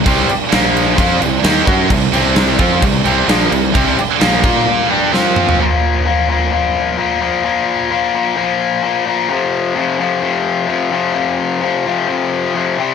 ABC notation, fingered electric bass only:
X:1
M:4/4
L:1/8
Q:1/4=130
K:Bblyd
V:1 name="Fingered electric bass" clef=bass
C,, z B,,,2 F,, C,, _E,, ^F,, | C,, C,,2 F,, C,, C,, B,,, C,, | C,, z B,,, B,, z4 | z8 |
z8 | z8 | z8 |]